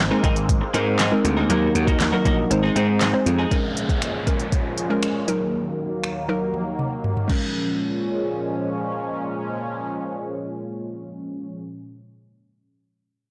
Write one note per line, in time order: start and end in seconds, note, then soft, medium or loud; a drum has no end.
0.00 1.47 G#3 medium
0.00 1.47 A#3 medium
0.00 1.47 C4 medium
0.11 0.20 G#3 medium
0.11 0.22 G#3 medium
0.11 0.20 C4 medium
0.11 0.22 C4 medium
0.11 0.23 D#4 medium
0.11 0.20 D#4 medium
0.11 0.23 A#4 medium
0.11 0.20 A#4 loud
0.23 0.60 G#1 loud
0.23 0.44 G#3 medium
0.23 0.60 G#3 medium
0.23 0.60 C4 medium
0.23 0.35 C4 loud
0.23 0.60 D#4 medium
0.23 0.35 D#4 loud
0.23 0.60 A#4 loud
0.23 0.35 A#4 loud
0.23 kick loud
0.23 closed hi-hat medium
0.36 muted clean electric guitar stroke soft
0.36 closed hi-hat medium
0.49 kick loud
0.49 closed hi-hat loud
0.61 muted clean electric guitar stroke medium
0.74 1.10 G#2 medium
0.74 0.94 G#3 medium
0.74 1.01 G#3 medium
0.74 1.01 C4 medium
0.74 0.86 C4 medium
0.74 1.01 D#4 medium
0.74 0.86 D#4 medium
0.74 1.01 A#4 loud
0.74 0.85 A#4 medium
0.74 closed hi-hat medium
0.86 muted clean electric guitar stroke soft
0.99 1.19 G#3 medium
0.99 1.11 C4 medium
0.99 1.11 D#4 loud
0.99 1.10 A#4 loud
0.99 snare medium
0.99 clap loud
0.99 closed hi-hat loud
1.12 1.39 G#3 medium
1.12 1.39 C4 medium
1.12 1.39 D#4 medium
1.12 1.39 A#4 medium
1.12 muted clean electric guitar stroke soft
1.24 1.43 D2 medium
1.24 muted clean electric guitar stroke soft
1.24 closed hi-hat medium
1.37 1.49 G#3 medium
1.37 1.49 C4 medium
1.37 1.49 D#4 medium
1.37 1.49 A#4 medium
1.49 1.68 D#2 loud
1.49 2.50 D#3 medium
1.49 1.95 F#3 loud
1.49 1.73 A#3 medium
1.49 1.95 A#3 medium
1.49 1.73 D#4 medium
1.49 1.95 D#4 medium
1.49 3.49 D#4 medium
1.49 2.50 F#4 medium
1.49 1.73 F#4 medium
1.49 2.50 A#4 medium
1.49 1.95 A#4 loud
1.49 1.73 A#4 loud
1.49 closed hi-hat medium
1.75 2.11 D#2 loud
1.75 muted clean electric guitar stroke soft
1.75 closed hi-hat medium
1.87 1.99 A#3 soft
1.87 1.99 D#4 medium
1.87 1.99 F#4 medium
1.87 1.99 A#4 medium
1.87 kick medium
1.87 closed hi-hat medium
2.00 muted clean electric guitar stroke soft
2.00 snare medium
2.00 clap loud
2.00 closed hi-hat medium
2.12 2.22 F#3 medium
2.12 2.22 A#3 medium
2.12 2.24 A#3 medium
2.12 2.22 D#4 medium
2.12 2.24 D#4 medium
2.12 2.24 F#4 medium
2.12 2.25 A#4 medium
2.12 2.22 A#4 loud
2.25 2.44 A#1 loud
2.25 2.50 F#3 medium
2.25 2.45 A#3 medium
2.25 2.50 A#3 medium
2.25 2.37 D#4 medium
2.25 2.49 D#4 medium
2.25 2.37 F#4 loud
2.25 2.51 A#4 loud
2.25 2.36 A#4 medium
2.25 kick loud
2.25 closed hi-hat medium
2.38 muted clean electric guitar stroke medium
2.50 2.69 G#1 loud
2.50 2.71 G#3 medium
2.50 3.50 G#3 medium
2.50 3.50 C4 medium
2.50 2.71 C4 medium
2.50 2.71 D#4 medium
2.50 2.71 C5 loud
2.50 muted clean electric guitar stroke soft
2.50 closed hi-hat loud
2.63 2.74 G#3 medium
2.63 2.75 C4 medium
2.63 2.75 D#4 medium
2.63 2.75 G#4 medium
2.75 3.12 G#2 medium
2.75 2.96 G#3 medium
2.75 3.03 G#3 medium
2.75 3.03 C4 medium
2.75 2.88 C4 medium
2.75 3.03 D#4 medium
2.75 2.87 D#4 medium
2.75 2.87 G#4 medium
2.75 3.03 C5 loud
2.75 closed hi-hat medium
2.88 muted clean electric guitar stroke soft
3.01 3.21 G#3 medium
3.01 3.13 C4 medium
3.01 3.13 D#4 loud
3.01 3.12 G#4 loud
3.01 snare loud
3.01 clap loud
3.01 closed hi-hat loud
3.13 3.40 G#3 medium
3.13 3.41 C4 medium
3.13 3.41 D#4 medium
3.13 3.41 C5 loud
3.13 muted clean electric guitar stroke soft
3.26 3.44 F2 medium
3.26 muted clean electric guitar stroke soft
3.26 closed hi-hat medium
3.39 3.56 G#3 medium
3.39 3.56 C4 medium
3.39 3.55 D#4 medium
3.39 3.55 G#4 medium
3.51 5.26 A#2 medium
3.51 5.26 F3 medium
3.51 4.05 G#3 medium
3.51 5.26 G#3 medium
3.51 4.05 C#4 medium
3.51 5.26 C#4 medium
3.51 4.06 A#4 loud
3.51 kick loud
3.51 closed hi-hat medium
3.51 downlifter medium
3.77 closed hi-hat medium
3.89 kick medium
3.89 closed hi-hat soft
4.02 finger snap loud
4.02 closed hi-hat medium
4.27 4.72 G#3 medium
4.27 4.72 C#4 medium
4.27 4.72 A#4 medium
4.27 kick medium
4.27 closed hi-hat medium
4.39 closed hi-hat medium
4.52 kick loud
4.52 closed hi-hat loud
4.78 closed hi-hat medium
4.90 5.28 G#3 medium
4.90 5.28 C#4 medium
4.90 5.27 A#4 loud
5.03 finger snap loud
5.03 closed hi-hat medium
5.28 7.27 D#2 medium
5.28 7.27 D#3 medium
5.28 7.27 F#3 medium
5.28 6.08 F#3 medium
5.28 7.27 A#3 medium
5.28 6.09 D#4 medium
5.28 6.09 A#4 medium
5.28 closed hi-hat medium
6.04 finger snap loud
6.29 7.01 F#3 medium
6.29 7.01 D#4 medium
6.29 7.01 A#4 loud
6.54 high tom medium
6.79 mid tom medium
7.04 mid tom medium
7.17 mid tom medium
7.28 11.63 A#2 medium
7.28 11.63 F3 medium
7.28 11.61 G#3 medium
7.28 11.63 G#3 medium
7.28 11.63 C#4 medium
7.28 kick loud
7.28 crash medium
7.32 11.65 A#4 medium